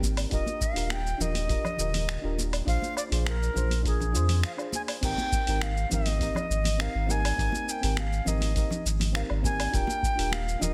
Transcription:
Already playing: sub bass G#1, fm electric piano C4 D#4 G4 A#4
0.02 kick, high conga, shaker
0.17 open hi-hat, low woodblock, shaker
0.30 sub bass D#1, fm electric piano D4 F4 G4 A#4, flute D#5, kick, open hi-hat, shaker
0.46 high conga, shaker
0.61 flute F5, kick, shaker
0.74 sub bass D#1, fm electric piano D4 F4 G4 A#4, open hi-hat, shaker
0.90 flute G5, finger snap, open hi-hat, high conga, shaker
1.06 shaker
1.18 sub bass D#1, fm electric piano D4 F4 G4 A#4, flute D#5, low conga, shaker
1.35 open hi-hat, high conga, shaker
1.48 fm electric piano D4 F4 G4 A#4, kick, open hi-hat, shaker
1.65 low conga, low woodblock, shaker
1.77 sub bass D#1, fm electric piano D3 F4 G4 A#4, shaker
1.93 open hi-hat, high conga, low conga, shaker
2.09 finger snap, open hi-hat, shaker
2.22 sub bass D#1, fm electric piano D4 F4 G4 A#4
2.38 high conga, shaker
2.53 open hi-hat, low woodblock, shaker
2.65 sub bass A#1, fm electric piano D4 F4 G#4 C5, flute F5, kick, open hi-hat, shaker
2.82 high conga, shaker
2.97 flute D5, low woodblock, shaker
3.09 sub bass A#1, fm electric piano D4 F4 G#4 C5, open hi-hat, shaker
3.25 flute A#4, finger snap, open hi-hat, high conga, shaker
3.43 shaker
3.54 sub bass A#1, fm electric piano D4 F4 G#4 C5, low conga, shaker
3.70 open hi-hat, high conga, shaker
3.83 fm electric piano D4 F4 G#4 A#4, kick, open hi-hat, shaker
3.87 flute G#4
4.00 low conga, shaker
4.12 sub bass F2, fm electric piano D4 F4 G#4 C5, shaker
4.28 open hi-hat, high conga, low conga, shaker
4.43 flute F5, finger snap, open hi-hat, shaker
4.57 fm electric piano D4 F4 G#4 C5, low woodblock, shaker
4.72 flute G#5, high conga, shaker
4.88 open hi-hat, low woodblock, shaker
5.01 sub bass G#1, fm electric piano C4 D#4 G4 A#4, flute G5, kick, open hi-hat, crash, shaker
5.18 high conga, shaker
5.32 kick, shaker
5.46 sub bass G#1, fm electric piano C4 D#4 G4 A#4, open hi-hat, shaker
5.62 flute F5, finger snap, open hi-hat, high conga, shaker
5.77 shaker
5.89 sub bass G#1, fm electric piano C4 D#4 G4 A#4, low conga, shaker
5.93 flute D#5
6.06 open hi-hat, high conga, shaker
6.19 fm electric piano C4 D#4 G4 A#4, kick, open hi-hat, shaker
6.35 low conga, low woodblock, shaker
6.50 sub bass G#1, shaker
6.64 open hi-hat, high conga, low conga, shaker
6.77 fm electric piano C4 D#4 G4 A#4, flute F5, finger snap, open hi-hat, shaker
6.95 sub bass G#1
7.06 fm electric piano C4 D#4 G4 A#4, high conga, shaker
7.11 flute G#5
7.25 open hi-hat, low woodblock, shaker
7.36 sub bass G#1, fm electric piano C4 D#4 G4 A#4, kick, open hi-hat, shaker
7.52 high conga, shaker
7.69 flute G5, shaker
7.81 sub bass G#1, fm electric piano C4 D#4 G4 A#4, open hi-hat, shaker
7.97 flute F5, finger snap, open hi-hat, high conga, shaker
8.12 shaker
8.25 sub bass G#1, fm electric piano C4 D#4 G4 A#4, flute D#5, low conga, shaker
8.41 open hi-hat, high conga, shaker
8.54 fm electric piano C4 D#4 G4 A#4, kick, open hi-hat, shaker
8.71 low conga, shaker
8.85 sub bass G#1, shaker
9.00 open hi-hat, high conga, low conga, shaker
9.12 fm electric piano C4 D#4 G4 A#4, flute F5, finger snap, open hi-hat, shaker
9.30 sub bass G#1, low woodblock
9.42 fm electric piano C4 D#4 G4 A#4, flute G#5, kick, high conga, shaker
9.60 open hi-hat, low woodblock, shaker
9.71 sub bass D#1, fm electric piano D4 F4 G4 A#4, flute G5, kick, open hi-hat, shaker
9.87 high conga, shaker
10.03 kick, shaker
10.16 sub bass D#1, fm electric piano D4 F4 G4 A#4, open hi-hat
10.20 shaker
10.32 flute F5, finger snap, open hi-hat, high conga, shaker
10.48 shaker
10.60 sub bass D#1, fm electric piano D4 F4 G4, flute D#5, low conga, shaker
10.64 fm electric piano A#4

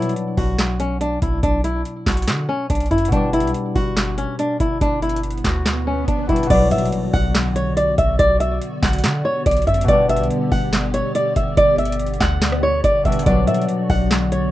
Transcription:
Already playing: 808-style bass B2, harp B2 F#3 D4, nylon-string guitar E4
0.02 closed hi-hat
0.09 closed hi-hat
0.16 closed hi-hat
0.37 808-style bass B1, nylon-string guitar F#4, kick, open hi-hat
0.59 snare, clap, closed hi-hat
0.80 nylon-string guitar C#4, closed hi-hat
1.01 nylon-string guitar D4, closed hi-hat
1.22 808-style bass B1, nylon-string guitar E4, kick, closed hi-hat
1.43 808-style bass B1, nylon-string guitar D4, kick, closed hi-hat
1.64 nylon-string guitar E4, closed hi-hat
1.85 closed hi-hat
2.06 808-style bass B1, nylon-string guitar F#4, kick, snare, clap, closed hi-hat, open hi-hat
2.12 closed hi-hat
2.17 closed hi-hat
2.22 closed hi-hat
2.28 808-style bass D3, snare, clap, closed hi-hat
2.49 nylon-string guitar C#4
2.70 808-style bass B1, nylon-string guitar D4, kick, closed hi-hat
2.75 closed hi-hat
2.80 closed hi-hat
2.86 closed hi-hat
2.91 808-style bass F#2, nylon-string guitar E4, kick, closed hi-hat
2.98 closed hi-hat
3.05 harp B2, closed hi-hat
3.12 808-style bass G1, harp G3, nylon-string guitar D4, kick, closed hi-hat, swell
3.16 harp D4
3.33 nylon-string guitar E4, closed hi-hat
3.40 808-style bass B1, closed hi-hat
3.47 closed hi-hat
3.54 closed hi-hat
3.76 808-style bass G1, nylon-string guitar F#4, kick, open hi-hat
3.97 snare, clap, closed hi-hat
4.18 nylon-string guitar C#4, closed hi-hat
4.39 nylon-string guitar D4, closed hi-hat
4.60 808-style bass G1, nylon-string guitar E4, kick, closed hi-hat
4.81 808-style bass G1, nylon-string guitar D4, kick, closed hi-hat
5.02 nylon-string guitar E4, closed hi-hat
5.09 closed hi-hat
5.16 closed hi-hat
5.23 closed hi-hat
5.31 closed hi-hat
5.38 closed hi-hat
5.44 808-style bass D2, nylon-string guitar F#4, kick, snare, clap, closed hi-hat
5.66 snare, clap, closed hi-hat
5.87 nylon-string guitar C#4
6.08 808-style bass G1, nylon-string guitar D4, kick, closed hi-hat
6.27 808-style bass G1, harp B2 G3, nylon-string guitar E4, kick, closed hi-hat
6.31 harp D4
6.36 closed hi-hat
6.43 harp B2, closed hi-hat
6.50 808-style bass B1, analog synth pad D3 B3 F#4 D5, harp F#3, nylon-string guitar D5, kick, closed hi-hat, crash, impact
6.54 harp D4
6.71 808-style bass B2, nylon-string guitar E5, closed hi-hat
6.78 closed hi-hat
6.85 closed hi-hat
6.92 closed hi-hat
7.13 808-style bass B1, nylon-string guitar F#5, kick, open hi-hat
7.35 snare, clap, closed hi-hat
7.56 nylon-string guitar C#5, closed hi-hat
7.77 nylon-string guitar D5, closed hi-hat
7.98 808-style bass B1, nylon-string guitar E5, kick, closed hi-hat
8.19 808-style bass B1, nylon-string guitar D5, kick, closed hi-hat
8.40 nylon-string guitar E5, closed hi-hat
8.62 closed hi-hat
8.83 808-style bass B1, nylon-string guitar F#5, kick, snare, clap, closed hi-hat, open hi-hat
8.88 closed hi-hat
8.93 closed hi-hat
8.99 closed hi-hat
9.04 808-style bass D3, snare, clap, closed hi-hat
9.25 nylon-string guitar C#5
9.46 808-style bass B1, nylon-string guitar D5, kick, closed hi-hat
9.51 closed hi-hat
9.57 closed hi-hat
9.62 closed hi-hat
9.67 808-style bass F#2, nylon-string guitar E5, kick, closed hi-hat
9.74 closed hi-hat
9.81 harp B2, closed hi-hat
9.88 808-style bass G1, harp G3, analog synth pad G4, nylon-string guitar D5, kick, closed hi-hat
9.92 harp D4
10.09 nylon-string guitar E5, closed hi-hat
10.16 808-style bass B1, closed hi-hat
10.24 closed hi-hat
10.31 closed hi-hat
10.52 808-style bass G1, nylon-string guitar F#5, kick, open hi-hat
10.73 snare, clap, closed hi-hat
10.94 nylon-string guitar C#5, closed hi-hat
11.15 nylon-string guitar D5, closed hi-hat
11.36 808-style bass G1, nylon-string guitar E5, kick, closed hi-hat
11.57 808-style bass G1, nylon-string guitar D5, kick, closed hi-hat
11.78 nylon-string guitar E5, closed hi-hat
11.85 closed hi-hat
11.92 closed hi-hat
11.99 closed hi-hat
12.06 closed hi-hat
12.14 closed hi-hat
12.20 808-style bass D2, nylon-string guitar F#5, kick, snare, clap, closed hi-hat
12.42 snare, clap, closed hi-hat
12.52 cross-stick
12.63 nylon-string guitar C#5
12.84 808-style bass G1, nylon-string guitar D5, kick, closed hi-hat
13.03 808-style bass G1, harp B2 G3, nylon-string guitar E5, kick, closed hi-hat
13.07 harp D4
13.12 closed hi-hat
13.19 harp B2, closed hi-hat
13.26 808-style bass B1, harp F#3, analog synth pad F#4, nylon-string guitar D5, kick, closed hi-hat
13.30 harp D4
13.47 808-style bass B2, nylon-string guitar E5, closed hi-hat
13.54 closed hi-hat
13.62 closed hi-hat
13.69 closed hi-hat
13.90 808-style bass B1, nylon-string guitar F#5, kick, open hi-hat
14.11 snare, clap, closed hi-hat
14.32 nylon-string guitar C#5, closed hi-hat

